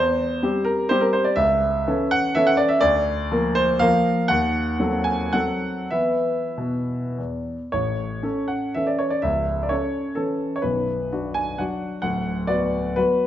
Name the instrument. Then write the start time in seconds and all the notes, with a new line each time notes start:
grand piano
Already playing: E2 C5
0.43 G3 C4 G4
0.65 A#4
0.89 G3 C4 G4 C5
1.01 A#4
1.13 C5
1.24 D5
1.36 C#2 E5
1.87 E3 C#4 A4
2.11 F#5
2.35 E3 C#4 A4 E5
2.47 F#5
2.57 D5
2.68 E5
2.81 D2 D5
3.31 F3 A#3 A#4
3.55 C5
3.79 F3 A#3 A#4 F5
4.28 D#2 F#5
4.80 F#3 C4 A4
5.04 G#5
5.33 F#3 C4 A4 F#5
5.91 E3 B3 B4 E5
6.58 B2
7.18 E2
7.72 A1 A2 C#5
8.23 C#4 A4
8.48 F#5
8.74 E3 C#4 A4 E5
8.87 D5
8.99 C#5
9.10 D5
9.22 C#1 C#2 E5
9.63 D5
9.69 C#4 A4 C#5
10.15 E3 C#4 A4
10.56 C#5
10.62 B0 B1 B4
11.12 D4 F#4
11.34 G#5
11.58 F#3 D4 F#4 F#5
12.02 D1 D2 F#5
12.47 B3 F#4 D5
12.96 F#3 B3 F#4 B4